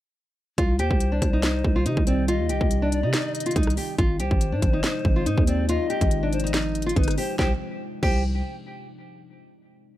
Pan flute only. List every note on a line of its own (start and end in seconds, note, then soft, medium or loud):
0.79 2.03 C5 medium
2.07 2.27 D5 medium
2.28 2.88 D#5 loud
2.92 3.32 D5 medium
3.35 3.55 D#5 medium
4.20 5.43 C5 medium
5.47 5.68 D5 medium
5.69 6.29 D#5 loud
6.33 6.53 C5 medium
6.96 7.17 B4 medium
7.17 7.38 C5 medium
7.39 7.51 C5 medium
8.03 8.23 C5 medium